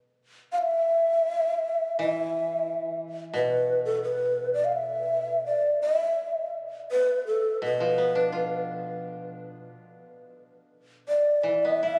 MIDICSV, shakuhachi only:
0, 0, Header, 1, 2, 480
1, 0, Start_track
1, 0, Tempo, 714286
1, 386, Time_signature, 2, 2, 24, 8
1, 1344, Tempo, 686499
1, 3264, Tempo, 718563
1, 5184, Tempo, 688863
1, 7104, Tempo, 715137
1, 8188, End_track
2, 0, Start_track
2, 0, Title_t, "Shakuhachi"
2, 0, Program_c, 0, 77
2, 352, Note_on_c, 0, 77, 63
2, 393, Note_on_c, 0, 76, 97
2, 403, Note_off_c, 0, 77, 0
2, 1338, Note_off_c, 0, 76, 0
2, 1342, Note_on_c, 0, 76, 90
2, 2028, Note_off_c, 0, 76, 0
2, 2287, Note_on_c, 0, 71, 87
2, 2626, Note_off_c, 0, 71, 0
2, 2639, Note_on_c, 0, 69, 73
2, 2757, Note_off_c, 0, 69, 0
2, 2761, Note_on_c, 0, 71, 82
2, 3108, Note_off_c, 0, 71, 0
2, 3118, Note_on_c, 0, 74, 79
2, 3194, Note_on_c, 0, 77, 63
2, 3204, Note_off_c, 0, 74, 0
2, 3250, Note_on_c, 0, 76, 82
2, 3260, Note_off_c, 0, 77, 0
2, 3734, Note_off_c, 0, 76, 0
2, 3742, Note_on_c, 0, 74, 75
2, 3967, Note_off_c, 0, 74, 0
2, 3981, Note_on_c, 0, 76, 85
2, 4443, Note_off_c, 0, 76, 0
2, 4710, Note_on_c, 0, 71, 92
2, 4931, Note_off_c, 0, 71, 0
2, 4949, Note_on_c, 0, 69, 91
2, 5168, Note_off_c, 0, 69, 0
2, 5197, Note_on_c, 0, 71, 92
2, 5879, Note_off_c, 0, 71, 0
2, 7580, Note_on_c, 0, 74, 90
2, 7807, Note_off_c, 0, 74, 0
2, 7807, Note_on_c, 0, 74, 103
2, 7941, Note_off_c, 0, 74, 0
2, 7941, Note_on_c, 0, 75, 103
2, 8028, Note_off_c, 0, 75, 0
2, 8028, Note_on_c, 0, 76, 103
2, 8188, Note_off_c, 0, 76, 0
2, 8188, End_track
0, 0, End_of_file